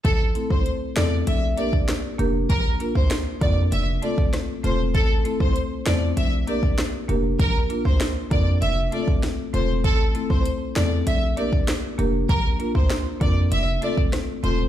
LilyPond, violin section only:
\new Staff \with { instrumentName = "Violin section" } { \time 4/4 \key a \phrygian \tempo 4 = 98 a'16 r8 c''16 r8 d''16 r16 e''16 r16 d''16 r4 r16 | bes'16 r8 c''16 r8 d''16 r16 e''16 r16 d''16 r8. c''16 r16 | a'16 r8 c''16 r8 d''16 r16 e''16 r16 d''16 r4 r16 | bes'16 r8 c''16 r8 d''16 r16 e''16 r16 d''16 r8. c''16 r16 |
a'16 r8 c''16 r8 d''16 r16 e''16 r16 d''16 r4 r16 | bes'16 r8 c''16 r8 d''16 r16 e''16 r16 d''16 r8. c''16 r16 | }